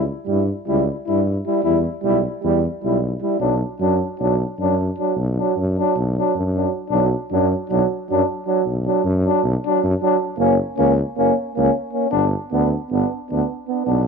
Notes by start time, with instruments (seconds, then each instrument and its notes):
0.26 tuba G2, euphonium G3 E4
0.67 tuba C#2, euphonium G3 E4
1.06 tuba G2, euphonium G3 E4
1.47 euphonium G3 E4
1.63 tuba E2, euphonium G3 E4
2.03 tuba B1, euphonium G3 E4
2.43 tuba E2, euphonium G3 E4
2.83 tuba B1, euphonium G3 E4
3.22 euphonium G3 E4
3.39 tuba B1, euphonium F#3 D4
3.80 tuba F#2, euphonium F#3 D4
4.19 tuba B1, euphonium F#3 D4
4.59 tuba F#2, euphonium F#3 D4
4.98 euphonium F#3 D4
5.16 tuba B1
5.37 euphonium F#3 D4
5.56 tuba F#2
5.78 euphonium F#3 D4
5.95 tuba B1
6.18 euphonium F#3 D4
6.35 tuba F#2
6.56 euphonium F#3 D4
6.89 tuba B1, euphonium F#3 D4
7.31 tuba F#2, euphonium F#3 D4
7.69 tuba B1, euphonium F#3 D4
8.10 tuba F#2, euphonium F#3 D4
8.46 euphonium F#3 D4
8.66 tuba B1
8.86 euphonium F#3 D4
9.04 tuba F#2
9.25 euphonium F#3 D4
9.44 tuba B1
9.65 euphonium F#3 D4
9.83 tuba F#2
10.02 euphonium F#3 D4
10.38 tuba F#1, euphonium A#3 C#4
10.77 tuba C#2, euphonium A#3 C#4
11.17 tuba F#1, euphonium A#3 C#4
11.56 tuba C#2, euphonium A#3 C#4
11.93 euphonium A#3 C#4
12.10 tuba G1, euphonium B3 D4
12.52 tuba D2, euphonium B3 D4
12.91 tuba G1, euphonium B3 D4
13.31 tuba D2, euphonium B3 D4
13.68 euphonium B3 D4
13.86 tuba B1, euphonium B3 D4